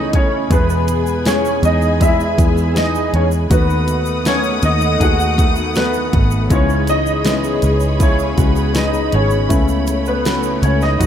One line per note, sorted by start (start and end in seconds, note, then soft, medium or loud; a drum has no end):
0.00 0.13 C#2 loud
0.00 0.58 C#3 medium
0.00 0.47 E3 medium
0.00 0.11 A3 medium
0.00 0.48 A3 medium
0.00 0.31 B3 medium
0.00 0.51 B3 medium
0.00 0.53 C#4 medium
0.00 0.11 D#4 medium
0.00 0.52 E4 medium
0.00 1.00 E4 medium
0.00 0.52 G#4 medium
0.00 0.53 A4 medium
0.00 0.46 C#5 medium
0.00 0.14 D#5 medium
0.00 6.47 B5 medium
0.13 0.48 B1 medium
0.13 0.58 A3 medium
0.13 0.49 C#4 medium
0.13 0.49 C#5 medium
0.13 kick medium
0.13 closed hi-hat medium
0.32 0.68 B3 medium
0.50 1.59 E2 loud
0.50 1.99 E2 medium
0.50 1.59 B2 medium
0.50 1.22 G#3 medium
0.50 1.22 B3 medium
0.50 1.23 B3 medium
0.50 1.22 E4 medium
0.50 3.48 G#4 medium
0.50 1.22 G#4 medium
0.50 1.28 B4 medium
0.50 3.48 G#5 medium
0.50 kick loud
0.50 closed hi-hat loud
0.50 shaker medium
0.68 1.06 B3 medium
0.68 shaker soft
0.87 1.24 G#3 medium
0.87 closed hi-hat medium
0.87 shaker medium
1.06 1.44 B3 medium
1.06 shaker soft
1.25 1.97 E3 medium
1.25 1.62 G#3 medium
1.25 1.97 G#3 medium
1.25 1.97 B3 medium
1.25 1.61 C#4 medium
1.25 1.97 G#4 medium
1.25 1.61 C#5 medium
1.25 snare loud
1.25 closed hi-hat medium
1.25 shaker medium
1.44 1.81 B3 medium
1.44 shaker soft
1.63 2.34 E2 medium
1.63 2.36 G#3 medium
1.63 1.99 D#4 medium
1.63 2.03 D#5 medium
1.63 closed hi-hat medium
1.63 shaker soft
1.81 2.19 B3 medium
1.81 shaker soft
2.00 3.58 E2 medium
2.00 2.36 G#3 medium
2.00 2.36 B3 medium
2.00 2.36 E4 medium
2.00 2.73 E4 medium
2.00 2.37 G#4 medium
2.00 2.79 E5 medium
2.00 kick medium
2.00 closed hi-hat medium
2.00 shaker medium
2.19 2.55 B3 medium
2.19 shaker soft
2.37 3.09 E2 medium
2.37 2.73 G#3 medium
2.37 2.72 G#3 medium
2.37 2.73 B3 medium
2.37 2.74 E4 medium
2.37 2.73 G#4 medium
2.37 kick medium
2.37 closed hi-hat medium
2.37 shaker medium
2.56 2.93 B3 medium
2.56 shaker soft
2.74 3.46 E3 medium
2.74 3.46 G#3 medium
2.74 3.10 G#3 medium
2.74 3.46 B3 medium
2.74 3.47 G#4 medium
2.74 3.11 D#5 medium
2.74 snare loud
2.74 closed hi-hat medium
2.74 shaker medium
2.78 3.12 D#4 medium
2.93 3.30 B3 medium
2.93 shaker soft
3.11 3.48 E2 medium
3.11 3.57 G#3 medium
3.11 3.23 C#5 medium
3.11 closed hi-hat medium
3.16 3.24 C#4 medium
3.30 3.67 B3 medium
3.30 shaker soft
3.49 4.59 D#2 loud
3.49 4.98 D#3 medium
3.49 4.59 D#3 medium
3.49 4.22 A3 medium
3.49 6.48 A3 medium
3.49 4.22 B3 medium
3.49 4.22 D#4 medium
3.49 4.98 F#4 medium
3.49 4.22 F#4 medium
3.49 4.22 B4 medium
3.49 6.48 F#5 medium
3.49 6.48 D#6 loud
3.49 kick loud
3.49 closed hi-hat loud
3.49 shaker medium
3.54 4.23 B3 medium
3.68 4.05 B3 medium
3.68 shaker soft
3.86 4.23 A3 medium
3.86 closed hi-hat medium
3.86 shaker medium
4.05 4.43 B3 medium
4.05 shaker soft
4.24 4.61 A3 medium
4.24 4.97 A3 medium
4.24 4.97 B3 medium
4.24 4.62 C#4 medium
4.24 4.97 D#4 medium
4.24 4.97 A4 medium
4.24 4.65 C#5 medium
4.24 snare loud
4.24 closed hi-hat medium
4.24 shaker medium
4.43 4.80 B3 medium
4.43 shaker soft
4.62 4.98 D#2 loud
4.62 5.35 A3 medium
4.62 5.02 D#5 medium
4.62 closed hi-hat medium
4.62 shaker soft
4.66 4.99 D#4 medium
4.80 5.18 B3 medium
4.80 shaker soft
4.99 6.09 D#2 loud
4.99 6.57 D#3 medium
4.99 5.36 A3 medium
4.99 5.36 B3 medium
4.99 5.36 D#4 medium
4.99 6.50 F#4 medium
4.99 5.36 G#4 medium
4.99 5.72 F#5 medium
4.99 kick medium
4.99 closed hi-hat medium
4.99 shaker medium
5.03 5.73 F#4 medium
5.18 5.55 B3 medium
5.18 shaker soft
5.37 5.74 A3 medium
5.37 5.73 A3 medium
5.37 5.74 B3 medium
5.37 5.74 D#4 medium
5.37 5.74 A4 medium
5.37 kick medium
5.37 closed hi-hat medium
5.37 shaker medium
5.56 5.93 B3 medium
5.56 shaker soft
5.75 6.47 A3 medium
5.75 6.12 A3 medium
5.75 6.47 B3 medium
5.75 6.48 B3 medium
5.75 6.47 D#4 medium
5.75 6.47 F#4 medium
5.75 6.47 B4 medium
5.75 snare loud
5.75 closed hi-hat medium
5.75 shaker medium
5.94 6.30 B3 medium
5.94 shaker soft
6.13 6.48 G#1 medium
6.13 6.58 A3 medium
6.13 kick loud
6.13 closed hi-hat medium
6.31 6.68 B3 medium
6.31 shaker soft
6.49 7.59 C#2 medium
6.49 7.59 G#2 medium
6.49 7.98 C#3 medium
6.49 7.22 E3 loud
6.49 7.22 G#3 medium
6.49 7.22 B3 medium
6.49 7.22 C#4 medium
6.49 6.87 C#4 medium
6.49 9.47 G#4 medium
6.49 9.48 C#5 medium
6.49 6.90 C#5 medium
6.49 10.96 B5 medium
6.49 kick loud
6.49 closed hi-hat medium
6.49 shaker medium
6.68 7.05 B3 medium
6.68 shaker soft
6.86 7.23 G#3 medium
6.86 8.05 D#5 loud
6.86 closed hi-hat medium
6.86 shaker medium
6.91 7.98 D#4 medium
7.06 7.43 B3 medium
7.06 shaker soft
7.24 7.96 E3 medium
7.24 7.96 G#3 medium
7.24 7.61 G#3 medium
7.24 7.96 B3 medium
7.24 7.96 C#4 medium
7.24 snare loud
7.24 closed hi-hat medium
7.24 shaker medium
7.43 7.81 B3 medium
7.43 shaker soft
7.62 8.34 C#2 loud
7.62 8.36 G#3 medium
7.62 closed hi-hat medium
7.62 shaker medium
7.80 8.18 B3 medium
7.80 shaker soft
7.99 9.48 C#3 medium
7.99 8.35 G#3 medium
7.99 8.36 B3 medium
7.99 8.36 C#4 medium
7.99 8.73 C#4 medium
7.99 8.36 E4 medium
7.99 8.78 C#5 medium
7.99 kick medium
7.99 closed hi-hat medium
7.99 shaker medium
8.18 8.56 B3 medium
8.18 shaker soft
8.37 9.09 C#2 loud
8.37 8.72 G#3 medium
8.37 8.73 G#3 medium
8.37 8.72 B3 medium
8.37 8.73 C#4 medium
8.37 8.74 F#4 medium
8.37 kick medium
8.37 closed hi-hat medium
8.37 shaker medium
8.56 8.93 B3 medium
8.56 shaker soft
8.74 9.46 G#3 medium
8.74 9.10 G#3 medium
8.74 9.46 B3 medium
8.74 9.46 C#4 medium
8.74 9.47 D#4 medium
8.74 9.15 D#5 medium
8.74 snare loud
8.74 closed hi-hat medium
8.74 shaker medium
8.79 9.12 D#4 medium
8.93 9.30 B3 medium
8.93 shaker soft
9.12 9.48 G#1 medium
9.12 9.57 G#3 medium
9.12 10.04 C#4 medium
9.12 10.10 C#5 medium
9.12 closed hi-hat medium
9.30 9.68 B3 medium
9.30 shaker soft
9.48 10.59 C#2 loud
9.48 11.00 C#3 medium
9.48 10.58 C#3 medium
9.48 10.21 A3 medium
9.48 11.06 A3 medium
9.48 10.21 B3 medium
9.48 10.21 C#4 medium
9.48 11.00 E4 medium
9.48 10.21 E4 medium
9.48 10.99 C#5 medium
9.48 kick loud
9.48 closed hi-hat loud
9.48 shaker medium
9.68 10.05 B3 medium
9.68 shaker soft
9.87 10.25 A3 medium
9.87 closed hi-hat medium
9.87 shaker medium
10.06 10.44 B3 medium
10.06 10.60 B3 medium
10.06 10.60 B4 medium
10.06 shaker soft
10.24 10.96 A3 medium
10.24 10.61 A3 medium
10.24 10.96 B3 medium
10.24 10.97 C#4 medium
10.24 10.97 F#4 medium
10.24 snare loud
10.24 closed hi-hat medium
10.24 shaker medium
10.43 10.81 B3 medium
10.43 shaker soft
10.63 10.98 C#2 loud
10.63 11.06 A3 medium
10.63 10.81 C#4 medium
10.63 10.83 C#5 medium
10.63 closed hi-hat medium
10.63 shaker soft
10.81 11.06 B3 medium
10.81 11.06 D#4 medium
10.81 11.06 D#5 medium
10.81 snare soft
10.81 shaker soft
10.98 11.06 B1 loud
10.98 11.06 B2 medium
10.98 11.06 A3 medium
10.98 11.06 B3 medium
10.98 11.06 D#4 medium
10.98 11.06 F#4 medium
10.98 11.06 F#5 medium
10.98 11.06 B5 medium
10.98 11.06 D#6 medium
10.98 kick medium
10.98 closed hi-hat medium
10.98 shaker medium